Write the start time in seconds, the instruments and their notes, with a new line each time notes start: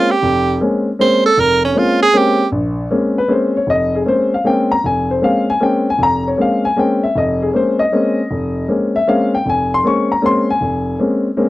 Already playing: grand piano G#3 A#3 C4 C#4, tenor saxophone F4
0.11 tenor saxophone G4
0.23 grand piano F1
0.61 grand piano G#3 A#3 C4 C#4
0.99 grand piano G#3 A#3 C4 C#4, tenor saxophone C5
1.26 tenor saxophone A4
1.37 grand piano F1, tenor saxophone A#4
1.65 tenor saxophone C#4
1.74 grand piano G#3 A#3 C4 C#4, tenor saxophone F4
2.02 tenor saxophone G#4
2.13 grand piano G#3 A#3 C4 C#4
2.18 tenor saxophone G4
2.52 grand piano A#1
2.90 grand piano G#3 A#3 C4 C#4
3.18 grand piano B4
3.28 grand piano G#3 A#3 C4 C#4 C5
3.57 grand piano C#5
3.67 grand piano F1 D#5
3.95 grand piano G#4
4.05 grand piano G#3 A#3 C4 C#4 C5
4.34 grand piano F5
4.44 grand piano G#3 A#3 C4 C#4 G5
4.72 grand piano A#5
4.84 grand piano F1 G#5
5.11 grand piano C5
5.22 grand piano G#3 A#3 C4 C#4 F5
5.50 grand piano G#5
5.60 grand piano G#3 A#3 C4 C#4 G5
5.90 grand piano G#5
5.99 grand piano F1
6.03 grand piano A#5
6.28 grand piano C#5
6.38 grand piano G#3 A#3 C4 C#4 F5
6.65 grand piano G#5
6.76 grand piano G#3 A#3 C4 C#4 G5
7.03 grand piano E5
7.15 grand piano F1 D#5
7.42 grand piano G#4
7.53 grand piano G#3 A#3 C4 C#4 C5
7.79 grand piano D#5
7.92 grand piano G#3 A#3 C4 C#4
8.31 grand piano F1
8.68 grand piano G#3 A#3 C4 C#4
8.96 grand piano E5
9.07 grand piano G#3 A#3 C4 C#4 F5
9.35 grand piano G5
9.46 grand piano F1 G#5
9.74 grand piano C6
9.84 grand piano G#3 A#3 C4 C#4 C#6
10.12 grand piano A#5
10.22 grand piano G#3 A#3 C4 C#4 C6
10.50 grand piano G#5
10.61 grand piano F1
10.99 grand piano G#3 A#3 C4 C#4
11.37 grand piano G#3 A#3 C4 C#4